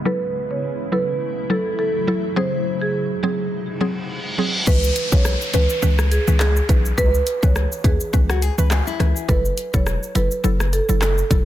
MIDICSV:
0, 0, Header, 1, 9, 480
1, 0, Start_track
1, 0, Key_signature, 4, "minor"
1, 0, Tempo, 576923
1, 47, Time_signature, 4, 2, 24, 8
1, 9526, End_track
2, 0, Start_track
2, 0, Title_t, "Marimba"
2, 0, Program_c, 0, 12
2, 47, Note_on_c, 0, 71, 92
2, 225, Note_off_c, 0, 71, 0
2, 423, Note_on_c, 0, 73, 74
2, 601, Note_off_c, 0, 73, 0
2, 768, Note_on_c, 0, 71, 73
2, 946, Note_off_c, 0, 71, 0
2, 1248, Note_on_c, 0, 69, 75
2, 1347, Note_off_c, 0, 69, 0
2, 1487, Note_on_c, 0, 69, 81
2, 1839, Note_off_c, 0, 69, 0
2, 1967, Note_on_c, 0, 72, 97
2, 2145, Note_off_c, 0, 72, 0
2, 2342, Note_on_c, 0, 68, 80
2, 2520, Note_off_c, 0, 68, 0
2, 2687, Note_on_c, 0, 68, 71
2, 2866, Note_off_c, 0, 68, 0
2, 3886, Note_on_c, 0, 71, 97
2, 4065, Note_off_c, 0, 71, 0
2, 4264, Note_on_c, 0, 73, 81
2, 4441, Note_off_c, 0, 73, 0
2, 4607, Note_on_c, 0, 71, 78
2, 4785, Note_off_c, 0, 71, 0
2, 5087, Note_on_c, 0, 68, 80
2, 5187, Note_off_c, 0, 68, 0
2, 5328, Note_on_c, 0, 68, 86
2, 5679, Note_off_c, 0, 68, 0
2, 5805, Note_on_c, 0, 71, 100
2, 5984, Note_off_c, 0, 71, 0
2, 6180, Note_on_c, 0, 73, 81
2, 6359, Note_off_c, 0, 73, 0
2, 6527, Note_on_c, 0, 68, 79
2, 6705, Note_off_c, 0, 68, 0
2, 7727, Note_on_c, 0, 71, 106
2, 7905, Note_off_c, 0, 71, 0
2, 8103, Note_on_c, 0, 73, 85
2, 8281, Note_off_c, 0, 73, 0
2, 8448, Note_on_c, 0, 71, 82
2, 8626, Note_off_c, 0, 71, 0
2, 8927, Note_on_c, 0, 69, 82
2, 9027, Note_off_c, 0, 69, 0
2, 9169, Note_on_c, 0, 69, 86
2, 9520, Note_off_c, 0, 69, 0
2, 9526, End_track
3, 0, Start_track
3, 0, Title_t, "Nylon-string guitar"
3, 0, Program_c, 1, 24
3, 6903, Note_on_c, 1, 66, 80
3, 7008, Note_off_c, 1, 66, 0
3, 7008, Note_on_c, 1, 68, 84
3, 7135, Note_off_c, 1, 68, 0
3, 7141, Note_on_c, 1, 71, 89
3, 7242, Note_off_c, 1, 71, 0
3, 7247, Note_on_c, 1, 68, 88
3, 7375, Note_off_c, 1, 68, 0
3, 7380, Note_on_c, 1, 64, 83
3, 7709, Note_off_c, 1, 64, 0
3, 9526, End_track
4, 0, Start_track
4, 0, Title_t, "Synth pluck"
4, 0, Program_c, 2, 84
4, 44, Note_on_c, 2, 54, 93
4, 47, Note_on_c, 2, 64, 84
4, 49, Note_on_c, 2, 69, 99
4, 492, Note_off_c, 2, 54, 0
4, 493, Note_off_c, 2, 64, 0
4, 494, Note_off_c, 2, 69, 0
4, 765, Note_on_c, 2, 54, 74
4, 768, Note_on_c, 2, 64, 71
4, 770, Note_on_c, 2, 69, 81
4, 936, Note_off_c, 2, 54, 0
4, 937, Note_off_c, 2, 64, 0
4, 938, Note_off_c, 2, 69, 0
4, 1245, Note_on_c, 2, 54, 74
4, 1247, Note_on_c, 2, 64, 69
4, 1250, Note_on_c, 2, 69, 84
4, 1416, Note_off_c, 2, 54, 0
4, 1417, Note_off_c, 2, 64, 0
4, 1418, Note_off_c, 2, 69, 0
4, 1726, Note_on_c, 2, 54, 75
4, 1728, Note_on_c, 2, 64, 67
4, 1731, Note_on_c, 2, 69, 84
4, 1896, Note_off_c, 2, 54, 0
4, 1897, Note_off_c, 2, 64, 0
4, 1899, Note_off_c, 2, 69, 0
4, 1966, Note_on_c, 2, 54, 92
4, 1969, Note_on_c, 2, 60, 86
4, 1972, Note_on_c, 2, 68, 104
4, 2413, Note_off_c, 2, 54, 0
4, 2414, Note_off_c, 2, 60, 0
4, 2416, Note_off_c, 2, 68, 0
4, 2688, Note_on_c, 2, 54, 74
4, 2690, Note_on_c, 2, 60, 67
4, 2693, Note_on_c, 2, 68, 82
4, 2857, Note_off_c, 2, 54, 0
4, 2858, Note_off_c, 2, 60, 0
4, 2860, Note_off_c, 2, 68, 0
4, 3166, Note_on_c, 2, 54, 77
4, 3169, Note_on_c, 2, 60, 72
4, 3172, Note_on_c, 2, 68, 82
4, 3336, Note_off_c, 2, 54, 0
4, 3337, Note_off_c, 2, 60, 0
4, 3339, Note_off_c, 2, 68, 0
4, 3645, Note_on_c, 2, 54, 77
4, 3648, Note_on_c, 2, 60, 72
4, 3650, Note_on_c, 2, 68, 83
4, 3816, Note_off_c, 2, 54, 0
4, 3817, Note_off_c, 2, 60, 0
4, 3818, Note_off_c, 2, 68, 0
4, 3885, Note_on_c, 2, 52, 102
4, 3887, Note_on_c, 2, 61, 93
4, 3890, Note_on_c, 2, 71, 106
4, 4228, Note_off_c, 2, 52, 0
4, 4229, Note_off_c, 2, 61, 0
4, 4231, Note_off_c, 2, 71, 0
4, 4260, Note_on_c, 2, 52, 86
4, 4262, Note_on_c, 2, 61, 79
4, 4264, Note_on_c, 2, 71, 90
4, 4581, Note_off_c, 2, 52, 0
4, 4582, Note_off_c, 2, 61, 0
4, 4583, Note_off_c, 2, 71, 0
4, 4605, Note_on_c, 2, 52, 77
4, 4608, Note_on_c, 2, 61, 69
4, 4610, Note_on_c, 2, 71, 87
4, 4830, Note_off_c, 2, 52, 0
4, 4831, Note_off_c, 2, 61, 0
4, 4832, Note_off_c, 2, 71, 0
4, 4844, Note_on_c, 2, 52, 94
4, 4846, Note_on_c, 2, 61, 85
4, 4849, Note_on_c, 2, 71, 103
4, 5015, Note_off_c, 2, 52, 0
4, 5016, Note_off_c, 2, 61, 0
4, 5018, Note_off_c, 2, 71, 0
4, 5219, Note_on_c, 2, 52, 73
4, 5223, Note_on_c, 2, 61, 67
4, 5225, Note_on_c, 2, 71, 79
4, 5541, Note_off_c, 2, 52, 0
4, 5543, Note_off_c, 2, 61, 0
4, 5544, Note_off_c, 2, 71, 0
4, 5565, Note_on_c, 2, 52, 80
4, 5567, Note_on_c, 2, 61, 71
4, 5570, Note_on_c, 2, 71, 86
4, 5789, Note_off_c, 2, 52, 0
4, 5790, Note_off_c, 2, 61, 0
4, 5792, Note_off_c, 2, 71, 0
4, 6179, Note_on_c, 2, 52, 87
4, 6182, Note_on_c, 2, 61, 79
4, 6185, Note_on_c, 2, 71, 98
4, 6501, Note_off_c, 2, 52, 0
4, 6502, Note_off_c, 2, 61, 0
4, 6504, Note_off_c, 2, 71, 0
4, 6525, Note_on_c, 2, 52, 78
4, 6527, Note_on_c, 2, 61, 70
4, 6530, Note_on_c, 2, 71, 87
4, 6750, Note_off_c, 2, 52, 0
4, 6750, Note_off_c, 2, 61, 0
4, 6752, Note_off_c, 2, 71, 0
4, 6765, Note_on_c, 2, 52, 95
4, 6768, Note_on_c, 2, 61, 91
4, 6770, Note_on_c, 2, 71, 104
4, 6936, Note_off_c, 2, 52, 0
4, 6937, Note_off_c, 2, 61, 0
4, 6938, Note_off_c, 2, 71, 0
4, 7140, Note_on_c, 2, 52, 78
4, 7142, Note_on_c, 2, 61, 69
4, 7145, Note_on_c, 2, 71, 85
4, 7461, Note_off_c, 2, 52, 0
4, 7462, Note_off_c, 2, 61, 0
4, 7464, Note_off_c, 2, 71, 0
4, 7485, Note_on_c, 2, 52, 80
4, 7487, Note_on_c, 2, 61, 76
4, 7490, Note_on_c, 2, 71, 91
4, 7709, Note_off_c, 2, 52, 0
4, 7710, Note_off_c, 2, 61, 0
4, 7712, Note_off_c, 2, 71, 0
4, 7725, Note_on_c, 2, 54, 98
4, 7728, Note_on_c, 2, 64, 90
4, 7730, Note_on_c, 2, 69, 110
4, 8068, Note_off_c, 2, 54, 0
4, 8070, Note_off_c, 2, 64, 0
4, 8071, Note_off_c, 2, 69, 0
4, 8101, Note_on_c, 2, 54, 86
4, 8103, Note_on_c, 2, 64, 78
4, 8106, Note_on_c, 2, 69, 98
4, 8422, Note_off_c, 2, 54, 0
4, 8423, Note_off_c, 2, 64, 0
4, 8424, Note_off_c, 2, 69, 0
4, 8445, Note_on_c, 2, 54, 79
4, 8448, Note_on_c, 2, 64, 71
4, 8450, Note_on_c, 2, 69, 83
4, 8669, Note_off_c, 2, 54, 0
4, 8671, Note_off_c, 2, 64, 0
4, 8672, Note_off_c, 2, 69, 0
4, 8684, Note_on_c, 2, 54, 97
4, 8687, Note_on_c, 2, 64, 87
4, 8689, Note_on_c, 2, 69, 105
4, 8855, Note_off_c, 2, 54, 0
4, 8857, Note_off_c, 2, 64, 0
4, 8858, Note_off_c, 2, 69, 0
4, 9058, Note_on_c, 2, 54, 75
4, 9062, Note_on_c, 2, 64, 67
4, 9064, Note_on_c, 2, 69, 81
4, 9380, Note_off_c, 2, 54, 0
4, 9382, Note_off_c, 2, 64, 0
4, 9383, Note_off_c, 2, 69, 0
4, 9406, Note_on_c, 2, 54, 77
4, 9408, Note_on_c, 2, 64, 74
4, 9411, Note_on_c, 2, 69, 91
4, 9526, Note_off_c, 2, 54, 0
4, 9526, Note_off_c, 2, 64, 0
4, 9526, Note_off_c, 2, 69, 0
4, 9526, End_track
5, 0, Start_track
5, 0, Title_t, "Ambient pad"
5, 0, Program_c, 3, 92
5, 0, Note_on_c, 3, 49, 76
5, 46, Note_on_c, 3, 57, 74
5, 46, Note_on_c, 3, 64, 87
5, 47, Note_on_c, 3, 54, 78
5, 1935, Note_off_c, 3, 49, 0
5, 1948, Note_off_c, 3, 57, 0
5, 1948, Note_off_c, 3, 64, 0
5, 1968, Note_on_c, 3, 56, 74
5, 1968, Note_on_c, 3, 63, 88
5, 1969, Note_on_c, 3, 48, 80
5, 3854, Note_off_c, 3, 54, 0
5, 3868, Note_off_c, 3, 56, 0
5, 3869, Note_off_c, 3, 48, 0
5, 3869, Note_off_c, 3, 63, 0
5, 9526, End_track
6, 0, Start_track
6, 0, Title_t, "808-style bass"
6, 0, Program_c, 4, 38
6, 3888, Note_on_c, 4, 37, 106
6, 4082, Note_off_c, 4, 37, 0
6, 4263, Note_on_c, 4, 35, 89
6, 4456, Note_off_c, 4, 35, 0
6, 4609, Note_on_c, 4, 37, 94
6, 4717, Note_off_c, 4, 37, 0
6, 4848, Note_on_c, 4, 37, 112
6, 5150, Note_off_c, 4, 37, 0
6, 5221, Note_on_c, 4, 37, 92
6, 5501, Note_off_c, 4, 37, 0
6, 5567, Note_on_c, 4, 35, 104
6, 5761, Note_off_c, 4, 35, 0
6, 5808, Note_on_c, 4, 37, 107
6, 6002, Note_off_c, 4, 37, 0
6, 6182, Note_on_c, 4, 37, 99
6, 6376, Note_off_c, 4, 37, 0
6, 6525, Note_on_c, 4, 39, 88
6, 6635, Note_off_c, 4, 39, 0
6, 6769, Note_on_c, 4, 37, 116
6, 7071, Note_off_c, 4, 37, 0
6, 7140, Note_on_c, 4, 37, 93
6, 7335, Note_off_c, 4, 37, 0
6, 7486, Note_on_c, 4, 37, 88
6, 7595, Note_off_c, 4, 37, 0
6, 7728, Note_on_c, 4, 30, 106
6, 7922, Note_off_c, 4, 30, 0
6, 8103, Note_on_c, 4, 28, 93
6, 8296, Note_off_c, 4, 28, 0
6, 8448, Note_on_c, 4, 30, 101
6, 8556, Note_off_c, 4, 30, 0
6, 8687, Note_on_c, 4, 30, 104
6, 8990, Note_off_c, 4, 30, 0
6, 9062, Note_on_c, 4, 30, 92
6, 9341, Note_off_c, 4, 30, 0
6, 9407, Note_on_c, 4, 28, 88
6, 9526, Note_off_c, 4, 28, 0
6, 9526, End_track
7, 0, Start_track
7, 0, Title_t, "Downlifter"
7, 0, Program_c, 5, 103
7, 3887, Note_on_c, 5, 60, 90
7, 7727, Note_off_c, 5, 60, 0
7, 9526, End_track
8, 0, Start_track
8, 0, Title_t, "Reverse cymbal"
8, 0, Program_c, 6, 119
8, 2927, Note_on_c, 6, 60, 79
8, 3887, Note_off_c, 6, 60, 0
8, 9526, End_track
9, 0, Start_track
9, 0, Title_t, "Drums"
9, 3888, Note_on_c, 9, 36, 103
9, 3888, Note_on_c, 9, 49, 103
9, 3888, Note_on_c, 9, 82, 82
9, 3971, Note_off_c, 9, 36, 0
9, 3971, Note_off_c, 9, 49, 0
9, 3971, Note_off_c, 9, 82, 0
9, 4025, Note_on_c, 9, 82, 56
9, 4108, Note_off_c, 9, 82, 0
9, 4126, Note_on_c, 9, 42, 83
9, 4126, Note_on_c, 9, 82, 57
9, 4210, Note_off_c, 9, 42, 0
9, 4210, Note_off_c, 9, 82, 0
9, 4263, Note_on_c, 9, 36, 96
9, 4263, Note_on_c, 9, 82, 81
9, 4346, Note_off_c, 9, 36, 0
9, 4346, Note_off_c, 9, 82, 0
9, 4367, Note_on_c, 9, 82, 72
9, 4368, Note_on_c, 9, 37, 105
9, 4450, Note_off_c, 9, 82, 0
9, 4452, Note_off_c, 9, 37, 0
9, 4503, Note_on_c, 9, 82, 52
9, 4587, Note_off_c, 9, 82, 0
9, 4606, Note_on_c, 9, 42, 73
9, 4606, Note_on_c, 9, 82, 56
9, 4690, Note_off_c, 9, 42, 0
9, 4690, Note_off_c, 9, 82, 0
9, 4739, Note_on_c, 9, 82, 79
9, 4822, Note_off_c, 9, 82, 0
9, 4847, Note_on_c, 9, 82, 73
9, 4930, Note_off_c, 9, 82, 0
9, 4981, Note_on_c, 9, 37, 105
9, 4982, Note_on_c, 9, 82, 64
9, 5065, Note_off_c, 9, 37, 0
9, 5065, Note_off_c, 9, 82, 0
9, 5088, Note_on_c, 9, 42, 74
9, 5088, Note_on_c, 9, 82, 49
9, 5171, Note_off_c, 9, 42, 0
9, 5171, Note_off_c, 9, 82, 0
9, 5222, Note_on_c, 9, 82, 84
9, 5305, Note_off_c, 9, 82, 0
9, 5325, Note_on_c, 9, 37, 104
9, 5325, Note_on_c, 9, 39, 103
9, 5327, Note_on_c, 9, 82, 73
9, 5408, Note_off_c, 9, 37, 0
9, 5408, Note_off_c, 9, 39, 0
9, 5410, Note_off_c, 9, 82, 0
9, 5461, Note_on_c, 9, 82, 54
9, 5544, Note_off_c, 9, 82, 0
9, 5567, Note_on_c, 9, 36, 93
9, 5568, Note_on_c, 9, 42, 73
9, 5568, Note_on_c, 9, 82, 50
9, 5650, Note_off_c, 9, 36, 0
9, 5651, Note_off_c, 9, 42, 0
9, 5651, Note_off_c, 9, 82, 0
9, 5702, Note_on_c, 9, 82, 78
9, 5786, Note_off_c, 9, 82, 0
9, 5807, Note_on_c, 9, 36, 108
9, 5807, Note_on_c, 9, 82, 84
9, 5890, Note_off_c, 9, 82, 0
9, 5891, Note_off_c, 9, 36, 0
9, 5944, Note_on_c, 9, 82, 54
9, 6027, Note_off_c, 9, 82, 0
9, 6046, Note_on_c, 9, 42, 86
9, 6046, Note_on_c, 9, 82, 60
9, 6129, Note_off_c, 9, 42, 0
9, 6129, Note_off_c, 9, 82, 0
9, 6182, Note_on_c, 9, 36, 97
9, 6182, Note_on_c, 9, 82, 83
9, 6265, Note_off_c, 9, 82, 0
9, 6266, Note_off_c, 9, 36, 0
9, 6287, Note_on_c, 9, 82, 71
9, 6288, Note_on_c, 9, 37, 100
9, 6370, Note_off_c, 9, 82, 0
9, 6371, Note_off_c, 9, 37, 0
9, 6424, Note_on_c, 9, 82, 53
9, 6507, Note_off_c, 9, 82, 0
9, 6525, Note_on_c, 9, 36, 99
9, 6527, Note_on_c, 9, 42, 74
9, 6527, Note_on_c, 9, 82, 54
9, 6608, Note_off_c, 9, 36, 0
9, 6610, Note_off_c, 9, 42, 0
9, 6610, Note_off_c, 9, 82, 0
9, 6659, Note_on_c, 9, 82, 76
9, 6743, Note_off_c, 9, 82, 0
9, 6768, Note_on_c, 9, 82, 71
9, 6769, Note_on_c, 9, 36, 106
9, 6851, Note_off_c, 9, 82, 0
9, 6853, Note_off_c, 9, 36, 0
9, 6902, Note_on_c, 9, 37, 109
9, 6903, Note_on_c, 9, 82, 63
9, 6985, Note_off_c, 9, 37, 0
9, 6986, Note_off_c, 9, 82, 0
9, 7008, Note_on_c, 9, 42, 72
9, 7008, Note_on_c, 9, 82, 53
9, 7091, Note_off_c, 9, 42, 0
9, 7091, Note_off_c, 9, 82, 0
9, 7143, Note_on_c, 9, 82, 80
9, 7226, Note_off_c, 9, 82, 0
9, 7246, Note_on_c, 9, 37, 100
9, 7246, Note_on_c, 9, 39, 102
9, 7247, Note_on_c, 9, 82, 76
9, 7329, Note_off_c, 9, 37, 0
9, 7329, Note_off_c, 9, 39, 0
9, 7331, Note_off_c, 9, 82, 0
9, 7382, Note_on_c, 9, 82, 55
9, 7465, Note_off_c, 9, 82, 0
9, 7489, Note_on_c, 9, 37, 89
9, 7489, Note_on_c, 9, 42, 72
9, 7489, Note_on_c, 9, 82, 50
9, 7572, Note_off_c, 9, 37, 0
9, 7573, Note_off_c, 9, 42, 0
9, 7573, Note_off_c, 9, 82, 0
9, 7623, Note_on_c, 9, 82, 80
9, 7707, Note_off_c, 9, 82, 0
9, 7728, Note_on_c, 9, 36, 103
9, 7728, Note_on_c, 9, 82, 81
9, 7811, Note_off_c, 9, 36, 0
9, 7811, Note_off_c, 9, 82, 0
9, 7865, Note_on_c, 9, 82, 58
9, 7948, Note_off_c, 9, 82, 0
9, 7967, Note_on_c, 9, 42, 81
9, 7967, Note_on_c, 9, 82, 59
9, 8050, Note_off_c, 9, 42, 0
9, 8050, Note_off_c, 9, 82, 0
9, 8103, Note_on_c, 9, 36, 101
9, 8103, Note_on_c, 9, 82, 81
9, 8186, Note_off_c, 9, 36, 0
9, 8186, Note_off_c, 9, 82, 0
9, 8207, Note_on_c, 9, 82, 72
9, 8208, Note_on_c, 9, 37, 106
9, 8290, Note_off_c, 9, 82, 0
9, 8291, Note_off_c, 9, 37, 0
9, 8344, Note_on_c, 9, 82, 55
9, 8428, Note_off_c, 9, 82, 0
9, 8448, Note_on_c, 9, 42, 75
9, 8448, Note_on_c, 9, 82, 55
9, 8531, Note_off_c, 9, 42, 0
9, 8531, Note_off_c, 9, 82, 0
9, 8580, Note_on_c, 9, 82, 77
9, 8663, Note_off_c, 9, 82, 0
9, 8688, Note_on_c, 9, 82, 74
9, 8771, Note_off_c, 9, 82, 0
9, 8822, Note_on_c, 9, 37, 106
9, 8823, Note_on_c, 9, 82, 63
9, 8905, Note_off_c, 9, 37, 0
9, 8906, Note_off_c, 9, 82, 0
9, 8928, Note_on_c, 9, 42, 70
9, 8928, Note_on_c, 9, 82, 52
9, 9011, Note_off_c, 9, 42, 0
9, 9011, Note_off_c, 9, 82, 0
9, 9062, Note_on_c, 9, 82, 85
9, 9145, Note_off_c, 9, 82, 0
9, 9165, Note_on_c, 9, 37, 98
9, 9165, Note_on_c, 9, 39, 102
9, 9167, Note_on_c, 9, 82, 77
9, 9249, Note_off_c, 9, 37, 0
9, 9249, Note_off_c, 9, 39, 0
9, 9250, Note_off_c, 9, 82, 0
9, 9301, Note_on_c, 9, 82, 57
9, 9384, Note_off_c, 9, 82, 0
9, 9407, Note_on_c, 9, 36, 94
9, 9409, Note_on_c, 9, 42, 72
9, 9409, Note_on_c, 9, 82, 52
9, 9490, Note_off_c, 9, 36, 0
9, 9492, Note_off_c, 9, 42, 0
9, 9492, Note_off_c, 9, 82, 0
9, 9526, End_track
0, 0, End_of_file